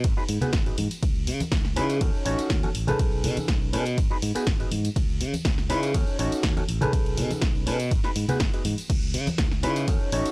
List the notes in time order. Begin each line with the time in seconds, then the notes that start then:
0.04 G#1, kick, closed hi-hat, ride, tambourine
0.17 B3 D#4 F#4 G#4 B4, muted fingered electric bass stroke, tambourine
0.29 G#2, open hi-hat
0.41 B3 D#4 F#4 G#4 B4, muted fingered electric bass stroke, closed hi-hat, tambourine, low conga
0.53 G#1, kick, snare, closed hi-hat, ride, tambourine
0.66 B3 D#4 F#4 G#4 B4, closed hi-hat, tambourine
0.78 G#2, open hi-hat, high conga
0.91 closed hi-hat, tambourine
1.03 C#2, kick, closed hi-hat, ride, tambourine
1.16 tambourine
1.27 C#3, open hi-hat
1.41 muted fingered electric bass stroke, closed hi-hat, tambourine, high conga
1.52 C#2, kick, snare, closed hi-hat, ride, tambourine
1.65 snare, tambourine
1.76 C#3 C#4 D#4 E4 G#4 B4, open hi-hat
1.90 closed hi-hat, tambourine
2.01 D#2 C#4 D#4 F#4 A4 C#5, kick, closed hi-hat, ride, tambourine
2.15 tambourine
2.25 A1 C#4 D#4 F#4 A4 C#5, open hi-hat
2.38 closed hi-hat, tambourine
2.50 D#2, kick, snare, closed hi-hat, ride, tambourine
2.63 C#4 D#4 F#4 A4 C#5, closed hi-hat, tambourine, high conga
2.75 A1, open hi-hat
2.87 C#4 D#4 G#4 A4 B4, closed hi-hat, tambourine, low conga
2.99 B1, kick, closed hi-hat, ride, tambourine
3.12 tambourine
3.24 B2, open hi-hat, low conga
3.37 muted fingered electric bass stroke, closed hi-hat, tambourine, high conga
3.48 B1, kick, snare, closed hi-hat, ride, tambourine
3.62 tambourine
3.73 B2 C#4 D#4 G#4 A4 B4, open hi-hat
3.85 closed hi-hat, tambourine
3.98 G#1, kick, closed hi-hat, ride, tambourine
4.10 B3 D#4 F#4 G#4 B4, tambourine
4.22 G#2, open hi-hat
4.35 B3 D#4 F#4 G#4 B4, muted fingered electric bass stroke, closed hi-hat, tambourine
4.47 G#1, kick, snare, closed hi-hat, ride
4.60 B3 D#4 F#4 G#4 B4, closed hi-hat, tambourine
4.71 G#2, open hi-hat, high conga
4.85 closed hi-hat, tambourine
4.96 C#2, kick, closed hi-hat, ride, tambourine
5.10 tambourine
5.21 C#3, open hi-hat
5.34 muted fingered electric bass stroke, closed hi-hat, tambourine, high conga
5.45 C#2, kick, snare, closed hi-hat, ride, tambourine
5.58 snare, tambourine
5.70 C#3 C#4 D#4 E4 G#4 B4, open hi-hat
5.83 closed hi-hat, tambourine
5.94 D#2 C#4 D#4 F#4 A4 C#5, kick, closed hi-hat, ride, tambourine
6.07 tambourine
6.19 A1 C#4 D#4 F#4 A4 C#5, open hi-hat
6.32 muted fingered electric bass stroke, closed hi-hat, tambourine
6.43 D#2, kick, snare, closed hi-hat, ride, tambourine
6.57 C#4 D#4 F#4 A4 C#5, closed hi-hat, tambourine, high conga
6.68 A1, open hi-hat
6.81 C#4 D#4 G#4 A4 B4, closed hi-hat, tambourine, low conga
6.93 B1, kick, closed hi-hat, ride, tambourine
7.06 closed hi-hat, tambourine
7.17 B2, open hi-hat, low conga
7.30 muted fingered electric bass stroke, closed hi-hat, tambourine, high conga
7.41 B1, kick, snare, closed hi-hat, ride
7.55 tambourine
7.67 B2 C#4 D#4 G#4 A4 B4, open hi-hat
7.80 closed hi-hat, tambourine
7.91 G#1, kick, closed hi-hat, ride
8.04 B3 D#4 F#4 G#4 B4, snare, closed hi-hat, tambourine
8.16 G#2, open hi-hat
8.28 B3 D#4 F#4 G#4 B4, muted fingered electric bass stroke, closed hi-hat, tambourine, low conga
8.40 G#1, kick, snare, closed hi-hat, ride, tambourine
8.53 B3 D#4 F#4 G#4 B4, closed hi-hat, tambourine
8.65 G#2, open hi-hat, high conga
8.78 closed hi-hat, tambourine
8.90 C#2, kick, closed hi-hat, ride, tambourine, crash
9.03 tambourine
9.14 C#3, open hi-hat
9.27 muted fingered electric bass stroke, closed hi-hat, tambourine, high conga
9.38 C#2, kick, snare, closed hi-hat, ride, tambourine
9.52 snare, tambourine
9.63 C#3 C#4 D#4 E4 G#4 B4, open hi-hat
9.76 closed hi-hat, tambourine
9.88 D#2 C#4 D#4 F#4 A4 C#5, kick, closed hi-hat, ride, tambourine
10.01 tambourine
10.12 A1 C#4 D#4 F#4 A4 C#5, open hi-hat
10.25 muted fingered electric bass stroke, closed hi-hat, tambourine